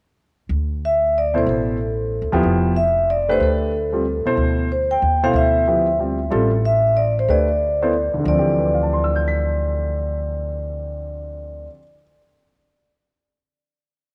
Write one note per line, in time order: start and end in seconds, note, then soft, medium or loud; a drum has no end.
0.49 1.42 D2 medium
0.85 1.17 E5 medium
1.18 1.37 D5 medium
1.34 1.76 B2 medium
1.34 1.76 E4 medium
1.34 1.76 A4 medium
1.34 1.76 C5 medium
1.38 1.42 C5 medium
1.46 2.18 A1 medium
1.46 2.29 A4 medium
2.22 2.32 D2 medium
2.32 2.43 D#2 medium
2.32 2.74 F3 medium
2.32 2.74 B3 medium
2.32 2.74 E4 medium
2.32 2.74 G4 medium
2.43 3.36 F1 medium
2.76 3.09 E5 medium
3.10 3.30 D5 loud
3.29 3.70 A3 medium
3.29 3.71 D4 medium
3.29 3.71 G4 medium
3.29 3.71 B4 medium
3.29 3.42 C5 loud
3.40 4.22 D2 medium
3.40 4.23 A4 medium
3.93 4.04 G3 medium
3.93 4.04 C4 medium
3.93 4.04 F4 soft
3.93 4.04 A4 medium
4.25 4.67 B2 medium
4.25 4.67 E4 medium
4.25 4.68 A4 medium
4.25 4.68 C5 medium
4.25 muted upright bass stroke soft
4.37 4.98 D2 medium
4.72 4.92 C5 medium
4.91 5.24 G5 medium
5.02 5.32 D#2 medium
5.23 5.65 B2 medium
5.23 5.65 E4 medium
5.23 5.65 A4 medium
5.23 5.65 C5 medium
5.23 5.35 F5 medium
5.33 6.27 D2 medium
5.33 5.96 E5 medium
5.67 5.86 F3 medium
5.67 5.86 B3 medium
5.67 5.86 E4 medium
5.67 5.86 G4 medium
5.99 6.18 G3 medium
5.99 6.18 C4 soft
5.99 6.18 F4 soft
5.99 6.18 G4 soft
6.30 7.24 A1 medium
6.30 6.49 G3 medium
6.30 6.50 C4 medium
6.30 6.50 F4 medium
6.30 6.50 A4 medium
6.65 6.98 E5 loud
6.97 7.06 D5 medium
7.19 7.30 C5 medium
7.28 8.10 D2 medium
7.28 7.47 A3 medium
7.28 7.48 D4 medium
7.28 7.48 G4 medium
7.28 7.48 B4 medium
7.28 8.11 D5 medium
7.82 7.92 B3 medium
7.82 7.92 E4 medium
7.82 7.93 A4 medium
7.82 7.93 C5 medium
8.14 11.64 D2 medium
8.14 muted upright bass stroke soft
8.19 11.67 D3 medium
8.24 11.66 D2 medium
8.24 11.69 F3 medium
8.28 11.72 C4 medium
8.28 11.67 D5 medium
8.34 11.74 E3 medium
8.39 11.77 G4 medium
8.58 11.66 B4 soft
8.66 11.70 D5 soft
8.74 11.74 F5 soft
8.83 11.78 A5 soft
8.93 11.83 C6 soft
9.04 11.89 E6 soft
9.16 11.95 G6 soft
9.28 12.01 B6 soft